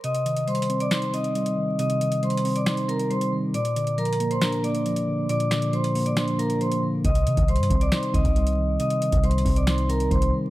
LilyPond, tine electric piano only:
\new Staff \with { instrumentName = "Tine electric piano" } { \clef bass \time 4/4 \key c \minor \tempo 4 = 137 c8 ees8 g8 c'8 ees'8 c'8 g8 ees8 | c8 ees8 g8 c'8 ees'8 c'8 g8 ees8 | bes,8 d8 f8 bes8 d'8 bes8 f8 d8 | bes,8 d8 f8 bes8 d'8 bes8 f8 d8 |
c8 ees8 g8 c'8 ees'8 c'8 g8 ees8 | c8 ees8 g8 c'8 ees'8 c'8 g8 ees8 | }